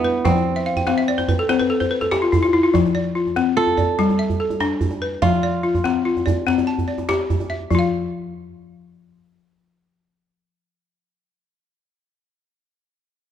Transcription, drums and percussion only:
0.15 djembe slap
0.25 djembe slap, djembe bass
0.36 djembe tone
0.56 djembe slap
0.77 djembe bass
0.87 djembe slap
1.19 djembe tone
1.28 djembe slap, djembe bass
1.49 djembe slap
1.60 djembe tone
1.81 djembe bass
2.02 djembe tone
2.12 djembe slap
2.33 djembe bass
2.44 djembe tone
2.64 djembe slap
2.75 djembe slap, djembe bass
2.86 djembe tone
3.06 djembe slap
3.27 djembe tone
3.37 djembe slap
3.67 djembe tone
3.78 djembe slap, djembe bass
3.99 djembe slap
4.10 djembe tone
4.30 djembe bass
4.50 djembe slap, djembe tone
4.60 djembe slap
4.81 djembe bass
4.91 djembe tone
5.12 djembe slap
5.22 djembe slap, djembe bass
5.33 djembe tone
5.64 djembe slap
5.75 djembe tone, djembe bass
5.85 djembe slap
6.17 djembe tone
6.27 djembe bass
6.48 djembe slap
6.58 djembe slap, djembe tone
6.68 djembe slap
6.78 djembe bass
6.89 djembe slap
6.98 djembe tone
7.09 djembe slap
7.20 djembe slap
7.30 djembe slap, djembe bass
7.40 djembe tone
7.60 djembe slap
7.71 djembe bass

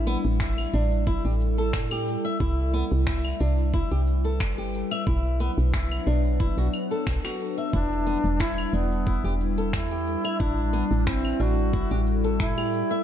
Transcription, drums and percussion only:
0.07 cabasa
0.25 cabasa
0.40 finger snap, kick, cabasa
0.58 cabasa, claves
0.74 cabasa
0.92 cabasa
1.07 kick, cabasa
1.25 cabasa
1.41 cabasa
1.58 cabasa
1.73 finger snap, kick, cabasa
1.91 cabasa, claves
2.07 cabasa
2.25 cabasa
2.40 kick, cabasa
2.58 cabasa
2.74 cabasa
2.92 cabasa
3.07 finger snap, kick, cabasa
3.25 cabasa, claves
3.40 cabasa
3.58 cabasa
3.74 kick, cabasa
3.92 cabasa
4.07 cabasa
4.25 cabasa
4.40 finger snap, kick, cabasa
4.58 cabasa
4.74 cabasa
4.91 cabasa, claves
5.07 kick, cabasa
5.25 cabasa
5.41 cabasa
5.59 cabasa
5.74 finger snap, kick, cabasa
5.91 cabasa, claves
6.07 cabasa
6.25 cabasa
6.40 kick, cabasa
6.58 cabasa
6.74 cabasa, claves
6.92 cabasa
7.07 finger snap, kick, cabasa
7.25 finger snap, cabasa, claves
7.40 cabasa
7.58 cabasa
7.73 kick, cabasa
7.92 cabasa
8.07 cabasa
8.25 cabasa
8.40 finger snap, kick, cabasa
8.58 cabasa, claves
8.74 cabasa
8.92 cabasa
9.07 kick, cabasa
9.25 cabasa
9.40 cabasa
9.58 cabasa
9.73 finger snap, kick, cabasa
9.92 cabasa
10.07 cabasa
10.25 cabasa, claves
10.40 kick, cabasa
10.59 cabasa
10.74 cabasa
10.92 cabasa
11.07 finger snap, kick, cabasa
11.25 cabasa, claves
11.40 cabasa
11.58 cabasa
11.73 kick, cabasa
11.91 cabasa
12.07 cabasa
12.25 cabasa
12.40 finger snap, kick, cabasa
12.58 cabasa, claves
12.74 cabasa
12.91 cabasa

